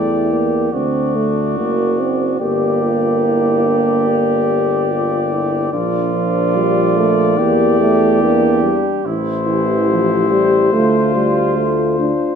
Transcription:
0.00 0.72 E2 soft
0.00 0.32 A3 medium
0.00 0.44 E4 soft
0.00 0.74 G4 soft
0.00 0.69 D5 medium
0.30 0.72 A#3 medium
0.72 1.59 D2 soft
0.72 1.17 C4 medium
0.72 1.59 D4 soft
0.72 2.40 F#4 soft
0.72 2.37 D5 soft
1.16 1.57 A3 medium
1.57 2.41 F#1 soft
1.57 2.01 A#3 medium
1.57 2.40 F#4 soft
1.99 2.40 C4 medium
2.40 5.70 G1 soft
2.40 5.69 A#3 medium
2.40 5.69 G4 medium
2.40 2.84 G4 soft
2.40 5.69 D5 soft
2.82 3.26 F4 soft
3.24 3.68 E4 medium
3.66 4.09 D4 medium
4.08 4.93 G4 medium
4.91 5.33 F4 medium
5.32 5.72 E4 medium
5.73 7.40 A#1 medium
5.73 6.14 D4 soft
5.73 7.40 F4 medium
5.73 8.89 D5 medium
6.14 6.57 F3 medium
6.14 6.57 D4 medium
6.56 6.98 G3 medium
6.56 7.12 F4 medium
6.97 7.38 A3 medium
7.38 8.88 E2 medium
7.38 7.80 A#3 medium
7.38 9.07 G4 medium
7.38 8.23 G4 medium
7.80 8.21 A3 medium
8.22 8.63 A#3 medium
8.22 9.05 D4 medium
8.63 9.05 G3 medium
9.05 10.69 A1 medium
9.05 9.49 E4 soft
9.05 10.74 E4 medium
9.05 12.35 C5 medium
9.47 9.86 E3 medium
9.47 10.75 G4 medium
9.89 10.30 F3 medium
10.31 10.72 G3 medium
10.72 12.11 D2 soft
10.72 11.14 A3 medium
10.72 12.14 F4 medium
10.72 11.57 F4 soft
11.15 11.58 G3 medium
11.57 11.99 A3 medium
11.57 12.35 F4 medium
11.99 12.35 D4 medium

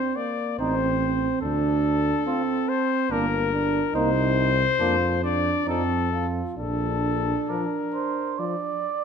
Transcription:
0.00 0.18 C4 medium
0.00 0.17 C5 medium
0.16 0.61 A#3 soft
0.16 0.58 D5 medium
0.59 1.29 A1 medium
0.59 0.75 C4 soft
0.59 1.43 C4 medium
0.59 0.75 D#4 soft
0.59 1.41 C5 medium
1.41 2.13 D2 medium
1.41 2.25 D4 medium
1.41 2.70 A4 medium
2.26 3.12 C4 medium
2.26 2.43 C4 soft
2.26 2.42 F4 soft
2.69 3.13 C5 medium
3.10 3.81 G1 medium
3.10 3.52 A#3 medium
3.10 3.27 A#3 soft
3.10 3.26 D4 soft
3.10 3.96 A#4 medium
3.53 3.82 D4 medium
3.94 4.66 C2 medium
3.94 4.11 A#3 medium
3.94 4.10 D#4 soft
3.94 4.51 D#4 medium
3.94 5.21 C5 medium
4.79 5.53 F2 medium
4.79 4.96 A#3 soft
4.79 4.95 D4 soft
4.79 5.21 F4 medium
5.24 5.67 D4 medium
5.24 5.67 D5 medium
5.66 6.42 F2 medium
5.66 5.82 F3 soft
5.66 6.11 C4 soft
5.66 5.83 D#4 soft
5.66 6.27 A4 medium
6.12 6.57 F4 soft
6.57 7.34 A#1 medium
6.57 8.80 D4 medium
6.57 7.51 A4 medium
7.48 7.65 F3 soft
7.48 7.64 D4 soft
7.48 8.40 A#4 medium
7.94 8.40 C5 medium
8.39 8.55 F3 soft
8.39 9.04 D5 medium

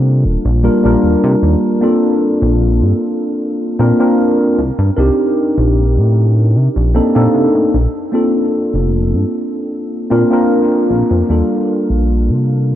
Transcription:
0.00 0.26 C3 medium
0.00 0.59 G3 medium
0.00 0.60 A#3 medium
0.00 0.60 D4 medium
0.00 0.60 F4 medium
0.00 0.61 A4 medium
0.25 0.37 D#1 medium
0.45 0.69 A#1 loud
0.63 0.79 G3 medium
0.63 0.79 A#3 medium
0.63 0.80 D4 medium
0.63 0.80 F4 medium
0.63 0.80 A#4 medium
0.83 0.96 A#1 loud
0.83 1.77 G3 medium
0.83 1.77 A#3 medium
0.83 1.78 D4 medium
0.83 1.78 F4 medium
0.83 1.79 A#4 medium
1.03 1.16 D#1 medium
1.24 1.36 C3 medium
1.43 1.55 D#2 loud
1.81 3.75 A#3 medium
1.81 3.76 C4 medium
1.81 3.76 D4 medium
1.81 3.76 F4 medium
1.81 3.77 A4 medium
2.42 2.83 A#1 loud
2.81 2.93 G2 medium
3.79 3.92 A#2 medium
3.79 3.95 A#3 medium
3.79 3.95 C4 medium
3.79 3.95 D4 medium
3.79 3.96 F4 medium
3.79 3.96 A#4 medium
3.99 4.56 A#3 medium
3.99 4.56 C4 medium
3.99 4.56 D4 medium
3.99 4.56 F4 medium
3.99 4.57 A#4 medium
4.58 4.71 C2 loud
4.79 4.91 G2 loud
4.97 5.11 C2 medium
4.97 6.91 C4 medium
4.97 6.92 D4 medium
4.97 6.92 D#4 medium
4.97 6.92 G4 medium
4.97 6.91 A#4 medium
5.58 5.99 A#1 loud
5.97 6.57 A2 medium
6.56 6.68 C3 loud
6.76 7.00 A#1 loud
6.94 7.11 A#3 medium
6.94 7.11 C4 medium
6.94 7.11 D4 medium
6.94 7.11 D#4 medium
6.94 7.11 A4 medium
7.15 7.28 A#2 loud
7.15 7.72 A#3 medium
7.15 7.72 C4 medium
7.15 7.72 D4 medium
7.15 7.72 D#4 medium
7.15 7.72 A4 medium
7.35 7.47 C3 medium
7.55 7.67 A2 medium
7.74 7.87 A#1 loud
8.12 10.07 A#3 medium
8.12 10.07 C4 medium
8.12 10.07 D4 medium
8.12 10.08 F4 medium
8.12 10.08 A4 medium
8.74 9.15 F1 loud
9.13 9.25 G2 medium
10.10 10.24 A#2 medium
10.10 10.26 A#3 medium
10.10 10.27 C4 medium
10.10 10.27 D4 medium
10.10 10.27 F4 medium
10.10 10.27 A#4 medium
10.30 11.24 A#3 medium
10.30 11.25 C4 medium
10.30 11.25 D4 medium
10.30 11.26 F4 medium
10.30 11.26 A#4 medium
10.90 11.03 A#1 loud
11.11 11.22 F2 loud
11.28 11.42 D#2 medium
11.28 12.75 G3 medium
11.28 12.75 A#3 medium
11.28 12.75 D4 medium
11.28 12.75 F4 medium
11.28 12.75 A4 medium
11.90 12.31 A#1 loud
12.29 12.75 C3 medium

